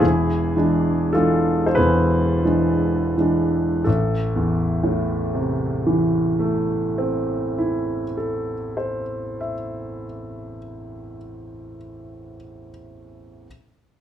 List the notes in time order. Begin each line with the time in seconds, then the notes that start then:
0.00 E1 E2 E4 G#4
0.57 E3 G#3 D4
1.13 E3 G#3 D4 F4 A4
1.66 C5
1.75 E1 E2 G#4 B4
2.45 E3 G#3 D4
3.17 E3 G#3 D4
3.84 A1 A4
4.36 E2
4.84 A2
5.35 C3
5.87 E3
6.39 A3
6.98 C4
7.58 E4
8.17 A4
8.77 C5
9.41 E5